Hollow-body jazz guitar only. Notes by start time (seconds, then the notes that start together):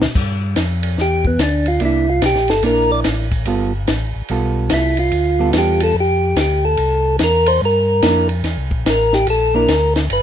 1.81 A#3 D4 E4
2.63 A#3 D4 E4
3.47 G3 B3 F4 A4
4.30 G3 B3 F4 A4
5.39 G3 B3 F4 A4
8.03 A#3 D4 E4
9.54 A#3 D4 E4